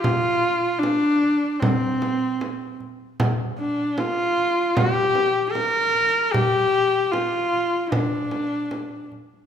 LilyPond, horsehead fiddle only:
\new Staff \with { instrumentName = "Horsehead fiddle" } { \time 4/4 \tempo 4 = 76 f'4 d'4 c'4. r8 | r8 d'8 f'4 g'4 bes'4 | g'4 f'4 d'4. r8 | }